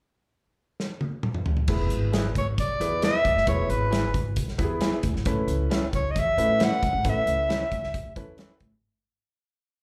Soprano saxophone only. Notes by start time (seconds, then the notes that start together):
2.38 C#5
2.60 D5
3.04 E5
3.48 C#5
3.70 B4
5.95 C#5
6.11 D#5
6.19 E5
6.63 F#5
7.09 E5